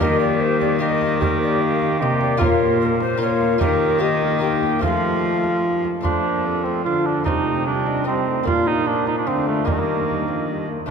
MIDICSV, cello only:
0, 0, Header, 1, 2, 480
1, 0, Start_track
1, 0, Tempo, 402685
1, 18, Time_signature, 3, 2, 24, 8
1, 12998, End_track
2, 0, Start_track
2, 0, Title_t, "Cello"
2, 0, Program_c, 0, 42
2, 20, Note_on_c, 0, 51, 82
2, 2404, Note_on_c, 0, 48, 78
2, 2422, Note_off_c, 0, 51, 0
2, 2867, Note_off_c, 0, 48, 0
2, 2874, Note_on_c, 0, 46, 83
2, 4284, Note_off_c, 0, 46, 0
2, 4314, Note_on_c, 0, 51, 81
2, 5715, Note_off_c, 0, 51, 0
2, 5763, Note_on_c, 0, 53, 77
2, 6953, Note_off_c, 0, 53, 0
2, 7215, Note_on_c, 0, 53, 54
2, 8176, Note_on_c, 0, 50, 53
2, 8194, Note_off_c, 0, 53, 0
2, 8664, Note_on_c, 0, 48, 56
2, 8681, Note_off_c, 0, 50, 0
2, 10088, Note_off_c, 0, 48, 0
2, 10095, Note_on_c, 0, 46, 66
2, 11049, Note_on_c, 0, 50, 58
2, 11067, Note_off_c, 0, 46, 0
2, 11525, Note_off_c, 0, 50, 0
2, 11532, Note_on_c, 0, 51, 60
2, 12715, Note_off_c, 0, 51, 0
2, 12998, End_track
0, 0, End_of_file